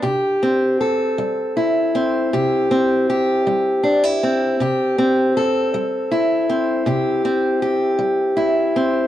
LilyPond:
\new Staff \with { instrumentName = "Steel-string acoustic guitar" } { \time 12/8 \key c \major \tempo 4. = 53 << { g'8 c'8 a'4 e'8 c'8 g'8 c'8 g'4 d'16 e'16 c'8 | g'8 c'8 a'4 e'8 c'8 g'8 c'8 g'4 e'8 c'8 | } \\ { c4 r8 g4 r8 c4 r8 g4 r8 | c4 r8 g4 r8 c4 r8 g4 r8 | } >> }